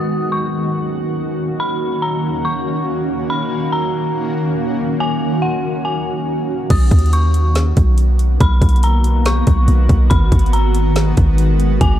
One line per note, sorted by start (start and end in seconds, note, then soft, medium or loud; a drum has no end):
0.00 6.66 D#3 medium
0.00 6.66 A#3 medium
0.00 6.66 C#4 medium
0.00 6.66 F#4 medium
0.00 0.29 D#6 medium
0.32 0.72 C#6 medium
1.60 2.00 B5 loud
2.02 2.42 A#5 medium
2.45 2.85 C#6 medium
3.30 3.70 B5 loud
3.72 4.12 A#5 medium
5.00 5.40 G#5 loud
5.42 5.82 F#5 medium
5.85 6.25 G#5 medium
6.70 6.91 B1 loud
6.70 11.99 D#3 medium
6.70 10.07 A#3 medium
6.70 11.99 B3 medium
6.70 11.99 F#4 medium
6.70 7.10 D#6 medium
6.70 kick loud
6.70 closed hi-hat medium
6.70 crash loud
6.91 7.73 D#2 loud
6.91 kick loud
6.91 closed hi-hat medium
6.99 closed hi-hat medium
7.06 closed hi-hat soft
7.13 7.53 C#6 medium
7.13 closed hi-hat medium
7.34 closed hi-hat medium
7.55 snare loud
7.55 closed hi-hat medium
7.77 8.38 B1 loud
7.77 kick medium
7.77 closed hi-hat medium
7.98 closed hi-hat medium
8.19 closed hi-hat medium
8.40 8.61 B1 loud
8.40 8.81 B5 loud
8.40 kick loud
8.40 closed hi-hat medium
8.62 9.43 B1 loud
8.62 kick loud
8.62 closed hi-hat medium
8.69 closed hi-hat medium
8.76 closed hi-hat soft
8.83 9.23 A#5 medium
8.83 closed hi-hat medium
9.04 closed hi-hat medium
9.26 9.66 C#6 medium
9.26 snare loud
9.26 closed hi-hat medium
9.47 9.67 B1 loud
9.47 kick medium
9.47 closed hi-hat medium
9.68 9.89 B1 loud
9.68 closed hi-hat medium
9.89 10.10 B1 loud
9.89 kick loud
9.89 closed hi-hat medium
10.10 10.31 G#1 loud
10.10 11.99 G#3 medium
10.10 10.50 B5 loud
10.10 kick loud
10.10 closed hi-hat medium
10.32 11.14 G#1 loud
10.32 kick loud
10.32 closed hi-hat medium
10.39 closed hi-hat medium
10.46 closed hi-hat soft
10.53 10.93 A#5 medium
10.53 closed hi-hat medium
10.75 closed hi-hat medium
10.96 snare loud
10.96 closed hi-hat medium
11.17 11.79 G#1 loud
11.17 kick medium
11.17 closed hi-hat medium
11.38 closed hi-hat medium
11.60 closed hi-hat medium
11.81 11.99 G#1 loud
11.81 11.99 G#5 loud
11.81 kick loud
11.81 closed hi-hat medium